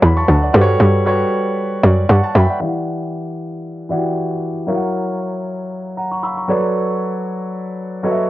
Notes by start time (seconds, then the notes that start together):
Already playing: F#3 F#4 A4 B4 C#5 D5 E5
0.02 E2 B5
0.16 A5 C#6
0.28 D2 F#5 A5
0.42 D5 F#5
0.53 G2 G3 F#4 A4 B4 C5
0.61 C#5
0.80 G2
1.05 G3 F#4 A4 B4 C#5
1.83 F#2 D5
2.09 G2 F#5 A5 C#6
2.23 F#5 A5
2.35 F#2 E5 G5 B5
2.49 D5 F#5
2.60 E3 E4 G4 D5 F5
2.68 F#5
3.89 E3 E4 F#4 D5 F#5
3.96 G4
4.67 F#3 E4 A#4 C#5 F5
4.75 F#5
5.97 F#5 A#5
6.11 A#5 C#6
6.23 B5 C#6 E6
6.37 A#5 C#6
6.48 F#3 F#4 A4 B4 C#5 D5
8.03 F#3 F#4 A4 B4 C#5 D#5
8.11 E5